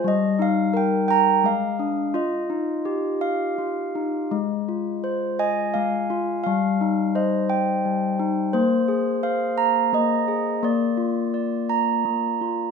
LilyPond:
\new Staff \with { instrumentName = "Handbells" } { \time 3/4 \key ees \major \tempo 4 = 86 << { ees''8 f''8 g''8 bes''8 f''4 | ees''2~ ees''8 r8 | r4 c''8 ees''8 f''4 | f''4 ees''4. r8 |
c''4 f''4 ees''4 | d''2~ d''8 r8 | } \\ { g8 ees'8 bes'8 g''8 aes8 d'8 | f'8 ees'8 g'8 f''8 f'8 ees'8 | aes8 f'4 aes''8 aes8 f'8 | g8 ees'8 c''8 g''8 g8 ees'8 |
bes8 aes'8 c''8 bes''8 bes8 aes'8 | bes8 f'8 d''8 bes''8 bes8 f'8 | } >> }